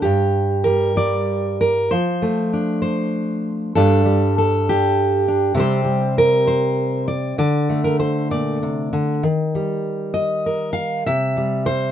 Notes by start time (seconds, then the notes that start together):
Already playing: D4
0.02 G2 G4
0.64 G3 A#4
0.96 G3 D5
1.61 A#4
1.91 F3 C5
2.22 A3
2.53 D4
2.82 C5
3.75 G2 G3 D4 A4
4.05 G3
4.38 A4
4.69 G4
5.28 D4
5.54 C3 G3 C4 G4
5.60 C5
5.85 G3
6.18 A#4
6.47 C5
7.08 D5
7.38 D3 D5
7.69 A3
7.84 A#4
8.00 C5
8.30 A#2 D5
8.63 C3
8.93 D3
9.23 D#3
9.55 G3
10.14 D#5
10.46 A#4
10.73 F5
11.06 C3 E5
11.37 G3
11.66 C5